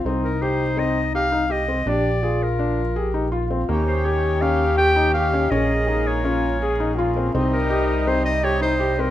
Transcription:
<<
  \new Staff \with { instrumentName = "Clarinet" } { \time 5/4 \key bes \dorian \tempo 4 = 164 r8 bes'8 c''4 ees''4 f''4 ees''4 | d''4. bes'2. r8 | r8 c''8 des''4 f''4 g''4 f''4 | ees''4. des''2. r8 |
r8 bes'4. c''8 ees''8 des''8 c''4 bes'8 | }
  \new Staff \with { instrumentName = "French horn" } { \time 5/4 \key bes \dorian ees'1~ ees'16 r8. | g'4 f'2 g'4 f'4 | g'1~ g'4 | aes'4 ees'4 f'4 aes'4 f'4 |
ees'1~ ees'16 r8. | }
  \new Staff \with { instrumentName = "Felt piano" } { \time 5/4 \key bes \dorian c'4 g'4 c'4 g'8 ees'8 g'8 c'8 | d'4 aes'4 d'4 aes'8 ees'8 f'8 c'8 | bes4 g'4 des'4 g'8 ees'8 g'8 des'8 | des'4 aes'4 des'4 aes'8 ees'8 f'8 c'8 |
c'4 g'4 c'4 g'8 ees'8 g'8 c'8 | }
  \new Staff \with { instrumentName = "Harmonium" } { \clef bass \time 5/4 \key bes \dorian r1 r4 | r1 r4 | <ees des' g'>1~ <ees des' g'>4 | <des aes bes>1~ <des aes bes>4 |
<c g ees'>1~ <c g ees'>4 | }
  \new Staff \with { instrumentName = "Analog synth bass" } { \clef bass \time 5/4 \key bes \dorian c,1~ c,4 | bes,,1~ bes,,4 | ees,1~ ees,4 | bes,,1~ bes,,4 |
c,1~ c,4 | }
>>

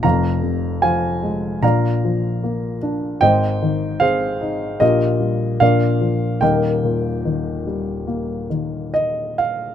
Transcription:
<<
  \new Staff \with { instrumentName = "Grand piano" } { \time 4/4 \key ees \major \tempo 4 = 75 << { bes''4 aes''4 bes''4. r8 | g''4 f''4 ees''4 f''4 | g''2. ees''8 f''8 | } \\ { f''4 <c'' f''>4 <d'' f''>2 | <c'' ees''>4 <aes' c''>4 <g' bes'>4 <bes' d''>4 | <bes' ees''>2. r4 | } >> }
  \new Staff \with { instrumentName = "Grand piano" } { \clef bass \time 4/4 \key ees \major <f,, f,>8 c8 f8 aes8 <bes,, bes,>8 f8 bes8 d'8 | <aes,, aes,>8 ees8 c'8 ees'8 <bes,, bes,>8 g8 <bes,, bes,>8 f8 | <ees,, ees,>8 bes,8 ees8 g8 bes8 ees4. | }
>>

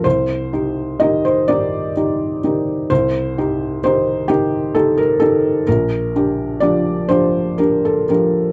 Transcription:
\new Staff \with { instrumentName = "Felt piano" } { \time 6/8 \key c \dorian \tempo 4. = 42 << { c''4 ees''16 c''16 d''4. | c''4 c''8 g'8 a'16 bes'16 a'8 | bes'4 d''8 c''8 bes'16 a'16 bes'8 | } \\ { c,8 <ees' g'>8 <ees ees' g'>8 <ees ees' g'>8 <ees' g'>8 <ees ees' g'>8 | c,8 <ees' g'>8 <ees ees' g'>8 <ees ees'>8 <ees' g'>8 <ees ees' g'>8 | bes,,8 <d' g'>8 <f d' g'>8 <f d' g'>8 <d' g'>8 <f d' g'>8 | } >> }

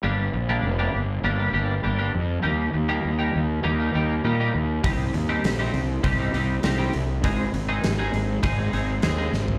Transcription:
<<
  \new Staff \with { instrumentName = "Clean electric guitar" } { \time 4/4 \key g \phrygian \tempo 4 = 100 <g bes d' g'>16 r8 <g bes d' g'>16 r16 <g bes d' g'>16 r8 <g bes d' g'>16 <g bes d' g'>16 <g bes d' g'>16 r16 <g bes d' g'>16 <g bes d' g'>16 r8 | <g bes ees' g'>16 r8 <g bes ees' g'>16 r16 <g bes ees' g'>16 r8 <g bes ees' g'>16 <g bes ees' g'>16 <g bes ees' g'>16 r16 <g bes ees' g'>16 <g bes ees' g'>16 r8 | <g c' ees' g'>16 r8 <g c' ees' g'>16 r16 <g c' ees' g'>16 r8 <g c' ees' g'>16 <g c' ees' g'>16 <g c' ees' g'>16 r16 <g c' ees' g'>16 <g c' ees' g'>16 r8 | <aes c' ees' aes'>16 r8 <aes c' ees' aes'>16 r16 <aes c' ees' aes'>16 r8 <aes c' ees' aes'>16 <aes c' ees' aes'>16 <aes c' ees' aes'>16 r16 <aes c' ees' aes'>16 <aes c' ees' aes'>16 r8 | }
  \new Staff \with { instrumentName = "Fingered electric bass" } { \clef bass \time 4/4 \key g \phrygian g,,8 bes,,8 f,,8 g,,8 g,,8 g,,8 g,,8 f,8 | ees,8 ees,8 ees,8 ees,8 ees,8 ees,8 bes,8 ees,8 | c,8 ees,8 bes,,8 c,8 c,8 c,8 c,8 c,8 | aes,,8 aes,,8 aes,,8 aes,,8 aes,,8 aes,,8 ees,8 aes,,8 | }
  \new DrumStaff \with { instrumentName = "Drums" } \drummode { \time 4/4 r4 r4 r4 r4 | r4 r4 r4 r4 | <hho bd>8 hho8 <hho sn>8 hho8 <hho bd>8 hho8 <hho sn>8 hho8 | <hho bd>8 hho8 <hho sn>8 hho8 <hho bd>8 hho8 <hho sn>8 sn16 tomfh16 | }
>>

